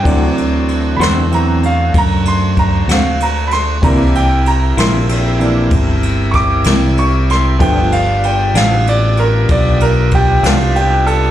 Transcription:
<<
  \new Staff \with { instrumentName = "Grand piano" } { \time 12/8 \key d \dorian \tempo 4. = 64 d''4 r8 <b'' c'''>8 bes''8 f''8 bes''8 c'''8 bes''8 f''8 bes''8 <b'' c'''>8 | bes''8 g''8 bes''8 c'''2 r8 <cis''' d'''>4 cis'''8 c'''8 | g''8 f''8 g''8 f''8 d''8 bes'8 d''8 bes'8 g'8 f'8 g'8 a'8 | }
  \new Staff \with { instrumentName = "Grand piano" } { \time 12/8 \key d \dorian <e fis c'>2 <e fis c'>8 r2. r8 | <e bes d'>8 r2 <e bes d'>8 r2. | <f a b>8 r1 r4. | }
  \new Staff \with { instrumentName = "Tonewheel organ" } { \time 12/8 \key d \dorian <a d' fis' c''>1. | <c' e' g' bes'>1. | <b d' f' g'>1. | }
  \new Staff \with { instrumentName = "Clean electric guitar" } { \time 12/8 \key d \dorian <d a c' fis'>8 r4 <d a c' fis'>8 r2 r8 <d a c' fis'>8 r4 | <c g bes e'>8 r4 <c g bes e'>8 r2 r8 <c g bes e'>8 r4 | <g, f b d'>8 r4 <g, f b d'>8 r2 r8 <g, f b d'>8 r4 | }
  \new Staff \with { instrumentName = "Fingered electric bass" } { \clef bass \time 12/8 \key d \dorian d,4. e,4. fis,4. d,4. | c,4. bes,,4. g,,4. c,4. | g,,4. a,,4. b,,4. c,4. | }
  \new DrumStaff \with { instrumentName = "Drums" } \drummode { \time 12/8 <bd cymr>8 cymr8 cymr8 <cymr sn>8 cymr8 cymr8 <bd cymr>8 cymr8 <bd cymr>8 <cymr sn>8 cymr8 <cymr sn>8 | <bd cymr>8 cymr8 cymr8 <cymr sn>8 cymr8 cymr8 <bd cymr>8 cymr8 <bd cymr sn>8 <cymr sn>8 cymr8 <cymr sn>8 | <bd cymr>8 cymr8 cymr8 <cymr sn>8 cymr8 cymr8 <bd cymr>8 cymr8 <bd cymr>8 <cymr sn>8 cymr8 cymr8 | }
>>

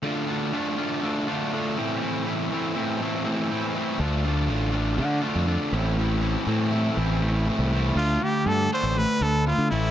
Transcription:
<<
  \new Staff \with { instrumentName = "Trumpet" } { \time 4/4 \key d \minor \tempo 4 = 121 r1 | r1 | r1 | r1 |
f'8 g'8 a'8 c''8 b'8 a'8 f'8 e'8 | }
  \new Staff \with { instrumentName = "Distorted electric guitar" } { \time 4/4 \key d \minor <d a d' f'>8 <a d' f'>8 <d a d' f'>8 <d a d' f'>8 <d a d' f'>8 <d a d' f'>8 <d a d' f'>8 <a, e a c' e'>8 | <a, e a c' e'>8 <a c' e'>8 <e a c' e'>8 <a, e a c' e'>8 <e a c' e'>8 <a, e a c' e'>8 <e a c' e'>8 <a c' e'>8 | <d a d' f'>8 <a d' f'>8 <d a d' f'>8 <d a d' f'>8 <d a d' f'>8 <d a d' f'>8 <d a d' f'>8 <a, e a c' e'>8 | <a, e a c' e'>8 <a c' e'>8 <e a c' e'>8 <a, e a c' e'>8 <e a c' e'>8 <a, e a c' e'>8 <e a c' e'>8 <a c' e'>8 |
<d a d'>8 <d a>8 <d a>8 <d a d'>8 <d a>8 <d a>8 <d a>8 <a, e a>8 | }
  \new Staff \with { instrumentName = "Fingered electric bass" } { \clef bass \time 4/4 \key d \minor r1 | r1 | d,4 a,,4 d8 r16 f,8 r16 a,,8~ | a,,4 a,4 a,,4~ a,,16 c,8. |
d,8 r8 g,8 r16 a,,8 r16 d,8. d16 a,,8 | }
>>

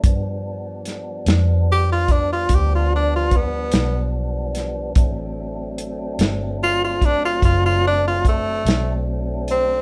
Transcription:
<<
  \new Staff \with { instrumentName = "Tenor saxophone" } { \time 12/8 \key g \major \tempo 4. = 49 r2 g'16 f'16 d'16 f'16 g'16 f'16 d'16 f'16 b4 r4 | r2 f'16 f'16 d'16 f'16 f'16 f'16 d'16 f'16 a4 r8 c'8 | }
  \new Staff \with { instrumentName = "Tonewheel organ" } { \time 12/8 \key g \major <f g b d'>1. | <fis a c' d'>1. | }
  \new Staff \with { instrumentName = "Fingered electric bass" } { \clef bass \time 12/8 \key g \major g,4. f,4. d,4. b,,4. | a,,4. g,,4. fis,,4. b,,4. | }
  \new DrumStaff \with { instrumentName = "Drums" } \drummode { \time 12/8 <hh bd>4 <hh sn>8 <hh sn>4 <hh bd>8 <hh bd>4 <hh bd>8 <hh sn>4 <hh sn>8 | <hh bd>4 hh8 <hh sn>4 <hh bd>8 <hh bd>4 <hh bd>8 <hh sn>4 hh8 | }
>>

